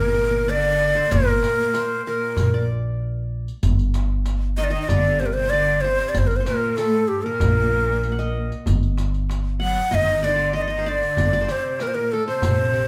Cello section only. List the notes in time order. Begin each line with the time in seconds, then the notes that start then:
Already playing: A#2
0.49 D3
1.13 A#2
2.06 A#2
4.58 D#3
4.72 D#3
4.91 D3
5.21 C3
5.35 C3
5.52 D3
5.83 C3
6.46 A#2
6.78 A2
7.06 A2
7.11 G2
7.26 A#2
9.60 F#3
9.85 F#3
9.93 D#3
10.23 D3
10.55 D#3
10.68 D#3
10.85 D3
11.41 D3
11.50 C3
11.80 A#2
11.96 A#2
12.13 A2
12.29 C3